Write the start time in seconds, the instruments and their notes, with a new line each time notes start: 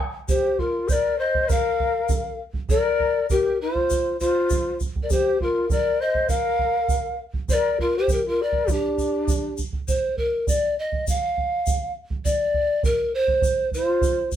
0.28 quena G4, pan flute C5, bombo low, shaker
0.58 quena F4, pan flute A#4, bombo low
0.88 quena C5, pan flute D5, bombo low, shaker
0.93 quena A#4
1.19 quena C5, pan flute D#5
1.35 bombo low
1.48 quena A#4, pan flute F5, bombo low, shaker
1.80 bombo low
2.09 bombo low, shaker
2.53 bombo low
2.69 quena A#4, pan flute D5, bombo low, shaker
3.00 bombo low
3.30 quena G4, pan flute A#4, bombo low, shaker
3.61 quena F4, pan flute C5
3.75 bombo low
3.90 bombo low, shaker
4.20 quena F4, pan flute C5, bombo low, shaker
4.50 bombo low, shaker
4.80 bombo low, shaker
4.96 bombo low
5.03 quena A#4, pan flute D5
5.10 quena G4, pan flute C5, bombo low, shaker
5.40 quena F4, pan flute A#4, bombo low
5.70 quena A#4, pan flute D5, bombo low, shaker
6.01 quena C5, pan flute D#5
6.14 bombo low
6.29 quena A#4, pan flute F5, bombo low, shaker
6.59 bombo low
6.88 bombo low, shaker
7.34 bombo low
7.48 quena C5, pan flute D5, bombo low, shaker
7.54 quena A#4
7.79 quena F4, pan flute A#4, bombo low
7.95 quena G4, pan flute C5
8.08 quena G4, bombo low, shaker
8.13 pan flute A#4
8.26 quena F4, pan flute A#4
8.42 quena A#4, pan flute D5
8.52 bombo low
8.68 quena D4, bombo low, shaker
8.73 pan flute G4
8.98 bombo low, shaker
9.28 bombo low, shaker
9.57 bombo low, shaker
9.73 bombo low
9.88 pan flute C5, bombo low, shaker
10.17 pan flute A#4, bombo low
10.47 pan flute D5, bombo low, shaker
10.79 pan flute D#5
10.92 bombo low
11.07 pan flute F5, bombo low, shaker
11.37 bombo low
11.66 bombo low, shaker
12.10 bombo low
12.25 pan flute D5, bombo low, shaker
12.54 bombo low
12.83 pan flute A#4, bombo low, shaker
13.15 pan flute C5
13.28 bombo low
13.42 bombo low, shaker
13.71 quena F4, pan flute C5, bombo low, shaker
14.01 bombo low, shaker
14.32 bombo low, shaker